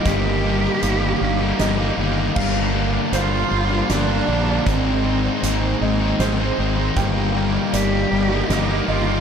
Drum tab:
CC |------|x-----|------|------|
HH |x-x-x-|--x-x-|x-x-x-|x-x-x-|
SD |----o-|----o-|----o-|----o-|
BD |o-----|o-----|o-----|o-----|